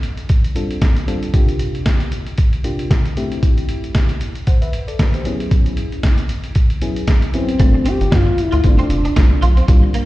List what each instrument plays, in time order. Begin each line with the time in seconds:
0.03 closed hi-hat
0.17 closed hi-hat
0.29 kick, closed hi-hat
0.44 closed hi-hat
0.55 fm electric piano G3 C4 D4 F4 A4, closed hi-hat
0.71 closed hi-hat
0.82 kick, snare, closed hi-hat
0.97 closed hi-hat
1.07 fm electric piano G3 C4 D4 F4 A4, closed hi-hat
1.23 closed hi-hat
1.34 fm electric piano C3 A#3 D4 F4 G4, kick, closed hi-hat
1.49 closed hi-hat
1.59 closed hi-hat
1.75 closed hi-hat
1.86 kick, snare, closed hi-hat
2.00 closed hi-hat
2.12 closed hi-hat
2.27 closed hi-hat
2.38 kick, closed hi-hat
2.53 closed hi-hat
2.64 fm electric piano C3 A#3 D4 F4 G4, closed hi-hat
2.79 closed hi-hat
2.91 kick, snare, closed hi-hat
3.05 closed hi-hat
3.17 fm electric piano D3 A3 C4 E4 G4, closed hi-hat
3.32 closed hi-hat
3.43 kick, closed hi-hat
3.58 closed hi-hat
3.69 closed hi-hat
3.84 closed hi-hat
3.95 kick, snare, closed hi-hat
4.09 closed hi-hat
4.21 closed hi-hat
4.35 closed hi-hat
4.47 fm electric piano C5 F#5, kick, closed hi-hat
4.62 fm electric piano B4 E5, closed hi-hat
4.73 closed hi-hat
4.87 fm electric piano A4 D5, closed hi-hat
4.99 fm electric piano F#4 B4, kick, snare, closed hi-hat
5.14 fm electric piano G4 C5, closed hi-hat
5.25 fm electric piano F#3 B3 C#4 E4 G#4, closed hi-hat
5.40 closed hi-hat
5.51 kick, closed hi-hat
5.66 closed hi-hat
5.77 closed hi-hat
5.92 closed hi-hat
6.03 kick, snare, closed hi-hat
6.18 closed hi-hat
6.29 closed hi-hat
6.44 closed hi-hat
6.55 kick, closed hi-hat
6.70 closed hi-hat
6.82 fm electric piano F#3 B3 C#4 E4 G#4, closed hi-hat
6.96 closed hi-hat
7.07 kick, snare, closed hi-hat
7.22 closed hi-hat
7.34 fm electric piano F#3 B3 C#4 E4 G#4, soft synth lead C4, closed hi-hat
7.49 closed hi-hat
7.59 analog synth bass G1, clean electric guitar G3, fm electric piano A3 C4 D4 F4, kick, closed hi-hat
7.74 muted clean electric guitar stroke
7.86 clean electric guitar C4, soft synth lead G4, closed hi-hat
8.01 analog synth bass G1, closed hi-hat
8.12 analog synth bass G2, clean electric guitar D4, soft synth lead F4, kick, snare, closed hi-hat
8.26 muted clean electric guitar stroke
8.38 soft synth lead E4, closed hi-hat
8.52 analog synth bass D2, clean electric guitar F4, closed hi-hat
8.64 analog synth bass G1, fm electric piano A3 C4 D4 F4, soft synth lead D4, kick, closed hi-hat
8.78 clean electric guitar C4, closed hi-hat
8.90 analog synth bass F1, muted clean electric guitar stroke, closed hi-hat
9.05 clean electric guitar D4, closed hi-hat
9.16 analog synth bass C2, fm electric piano A3 C4 D4 F4, muted clean electric guitar stroke, kick, snare, closed hi-hat
9.42 analog synth bass B1, clean electric guitar F4, closed hi-hat
9.57 clean electric guitar C4, closed hi-hat
9.68 analog synth bass C2, fm electric piano G3 A#3 D4 F4, clean electric guitar C4, kick, closed hi-hat
9.83 muted clean electric guitar stroke
9.94 clean electric guitar A#3, closed hi-hat